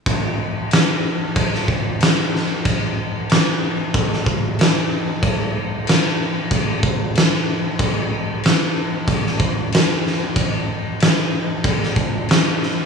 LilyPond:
\new DrumStaff \with { instrumentName = "Drums" } \drummode { \time 4/4 \tempo 4 = 93 <cymc bd>4 <cymc sn>4 <cymc bd>16 sn16 bd8 <cymc sn>8 sn8 | <cymc bd>4 <cymc sn>4 <cymc bd>16 sn16 bd8 <cymc sn>4 | <cymc bd>4 <cymc sn>4 <cymc bd>8 bd8 <cymc sn>4 | <cymc bd>4 <cymc sn>4 <cymc bd>16 sn16 bd8 <cymc sn>8 sn8 |
<cymc bd>4 <cymc sn>4 <cymc bd>16 sn16 bd8 <cymc sn>8 sn8 | }